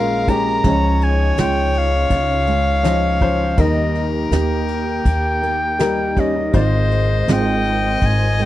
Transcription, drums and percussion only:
0.28 kick medium
0.28 ride medium
0.64 kick medium
0.64 ride medium
1.01 ride soft
1.37 snare medium
1.37 ride medium
1.74 ride soft
2.10 kick medium
2.10 ride medium
2.47 ride soft
2.84 snare medium
2.84 ride medium
3.21 kick medium
3.21 ride soft
3.57 kick medium
3.57 ride medium
3.95 ride soft
4.32 snare medium
4.32 ride medium
4.68 ride medium
5.05 kick medium
5.05 ride medium
5.43 ride medium
5.79 snare medium
5.79 ride medium
6.17 kick medium
6.17 ride medium
6.53 kick medium
6.53 ride medium
6.91 ride medium
7.28 snare medium
7.28 ride medium
7.64 ride soft
8.01 kick medium
8.01 ride medium
8.39 ride medium

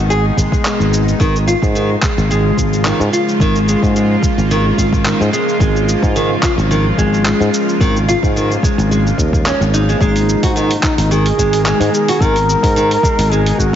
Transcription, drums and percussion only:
0.11 shaker soft
0.37 kick medium
0.37 shaker medium
0.52 kick loud
0.52 shaker soft
0.65 clap medium
0.65 shaker soft
0.81 shaker soft
0.93 shaker medium
1.08 shaker soft
1.20 kick loud
1.20 shaker soft
1.36 shaker soft
1.48 shaker medium
1.62 kick medium
1.62 shaker soft
1.76 shaker soft
2.02 kick loud
2.02 clap medium
2.02 shaker medium
2.18 shaker soft
2.31 shaker soft
2.57 kick medium
2.57 shaker medium
2.73 shaker soft
2.85 clap medium
2.85 shaker soft
3.01 shaker soft
3.13 shaker medium
3.29 shaker soft
3.40 kick loud
3.40 shaker soft
3.56 shaker soft
3.68 shaker medium
3.83 kick medium
3.83 shaker soft
3.96 shaker soft
4.23 kick loud
4.23 shaker medium
4.38 shaker soft
4.51 shaker soft
4.78 kick medium
4.78 shaker medium
4.93 kick loud
4.93 shaker soft
5.05 clap medium
5.05 shaker soft
5.21 shaker soft
5.34 shaker medium
5.49 shaker soft
5.60 kick loud
5.60 shaker soft
5.76 shaker soft
5.89 shaker medium
6.03 kick medium
6.03 shaker soft
6.16 shaker soft
6.43 kick medium
6.43 clap medium
6.43 shaker medium
6.59 shaker soft
6.71 shaker soft
6.98 kick medium
6.98 shaker medium
7.14 shaker soft
7.25 clap medium
7.25 shaker soft
7.41 shaker soft
7.54 shaker medium
7.69 shaker soft
7.80 kick loud
7.80 shaker soft
7.96 shaker soft
8.09 shaker medium
8.23 kick loud
8.23 shaker soft
8.37 shaker soft
8.52 shaker soft
8.63 kick loud
8.63 shaker medium
8.79 shaker soft
8.92 shaker soft
9.07 shaker soft
9.18 kick medium
9.18 shaker medium
9.33 kick medium
9.33 shaker soft
9.46 clap medium
9.46 shaker soft
9.62 shaker soft
9.74 shaker medium
9.89 shaker soft
10.01 kick loud
10.01 shaker soft
10.16 open hi-hat soft
10.16 shaker soft
10.29 shaker medium
10.43 kick loud
10.43 open hi-hat medium
10.43 shaker soft
10.57 shaker soft
10.71 open hi-hat soft
10.83 kick loud
10.83 clap medium
10.83 shaker medium
10.98 open hi-hat medium
10.98 shaker soft
11.11 shaker soft
11.26 open hi-hat soft
11.38 kick medium
11.38 shaker medium
11.53 open hi-hat medium
11.53 shaker soft
11.66 clap medium
11.66 shaker soft
11.81 open hi-hat soft
11.81 shaker soft
11.94 shaker medium
12.08 open hi-hat soft
12.08 shaker soft
12.21 kick loud
12.21 shaker soft
12.36 open hi-hat soft
12.36 shaker soft
12.49 shaker medium
12.63 kick loud
12.63 open hi-hat medium
12.63 shaker soft
12.77 shaker soft
12.91 open hi-hat soft
13.03 kick loud
13.03 shaker medium
13.19 open hi-hat medium
13.19 shaker soft
13.33 shaker soft
13.46 open hi-hat soft
13.58 kick medium
13.58 shaker medium

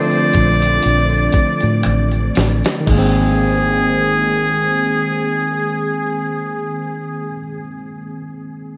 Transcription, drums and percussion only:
0.11 closed hi-hat soft
0.11 shaker soft
0.33 kick medium
0.33 closed hi-hat medium
0.33 shaker soft
0.61 closed hi-hat soft
0.61 shaker soft
0.83 closed hi-hat medium
0.83 shaker medium
1.10 shaker soft
1.32 kick medium
1.32 closed hi-hat medium
1.60 closed hi-hat soft
1.60 shaker soft
1.83 finger snap medium
1.83 closed hi-hat medium
1.83 shaker medium
2.11 closed hi-hat soft
2.11 shaker soft
2.35 snare medium
2.35 open hi-hat medium
2.64 snare medium
2.64 closed hi-hat soft
2.64 shaker soft
2.86 kick medium
2.86 crash medium
2.86 shaker medium

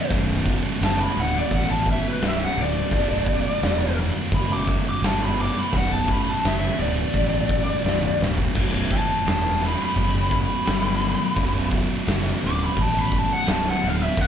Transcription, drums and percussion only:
0.11 kick loud
0.11 open hi-hat medium
0.46 kick medium
0.46 open hi-hat medium
0.81 snare loud
0.81 open hi-hat medium
1.17 open hi-hat medium
1.51 kick medium
1.51 open hi-hat medium
1.86 kick medium
1.86 open hi-hat medium
2.21 snare loud
2.21 open hi-hat medium
2.57 open hi-hat medium
2.91 kick loud
2.91 open hi-hat medium
3.26 kick medium
3.26 open hi-hat medium
3.62 snare loud
3.62 open hi-hat medium
3.97 open hi-hat medium
4.32 kick medium
4.32 open hi-hat medium
4.67 kick medium
4.67 open hi-hat medium
5.03 snare loud
5.03 open hi-hat medium
5.37 open hi-hat medium
5.73 kick loud
5.73 open hi-hat medium
6.08 kick medium
6.08 open hi-hat medium
6.44 snare loud
6.44 open hi-hat medium
6.78 open hi-hat medium
7.14 kick medium
7.14 open hi-hat medium
7.49 kick medium
7.49 open hi-hat medium
7.86 snare medium
8.03 mid tom medium
8.22 snare medium
8.38 kick medium
8.55 kick loud
8.55 open hi-hat medium
8.55 crash loud
8.91 kick medium
8.91 open hi-hat medium
9.26 snare loud
9.26 open hi-hat medium
9.61 open hi-hat medium
9.96 kick medium
9.96 open hi-hat medium
10.31 kick medium
10.31 open hi-hat medium
10.66 snare loud
10.66 open hi-hat medium
11.01 open hi-hat medium
11.36 kick loud
11.36 open hi-hat medium
11.71 kick medium
11.71 open hi-hat medium
12.07 snare loud
12.07 open hi-hat medium
12.42 open hi-hat medium
12.76 kick medium
12.76 open hi-hat loud
13.12 kick medium
13.12 open hi-hat medium
13.46 snare loud
13.46 open hi-hat medium
13.82 open hi-hat medium
14.17 kick loud
14.17 open hi-hat medium

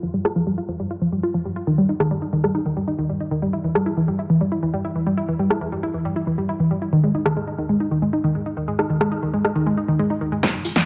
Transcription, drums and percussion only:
0.25 cross-stick medium
2.00 cross-stick medium
2.44 cross-stick medium
3.75 cross-stick medium
5.50 cross-stick medium
7.26 cross-stick medium
8.79 cross-stick medium
9.01 cross-stick medium
9.45 cross-stick medium
10.43 kick loud
10.43 snare soft
10.43 closed hi-hat medium
10.54 closed hi-hat soft
10.65 open hi-hat loud
10.76 snare soft
10.76 closed hi-hat medium

